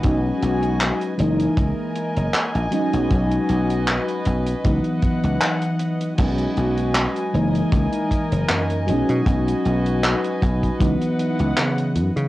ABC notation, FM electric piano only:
X:1
M:4/4
L:1/8
Q:"Swing 16ths" 1/4=78
K:B
V:1 name="FM electric piano"
[F,G,CD]3 [E,G,A,D]4 [F,G,CD]- | [F,G,CD]4 [E,F,B,D]4 | [F,G,CD]3 [E,G,A,D]4 [F,G,CD]- | [F,G,CD]4 [E,F,B,D]4 |]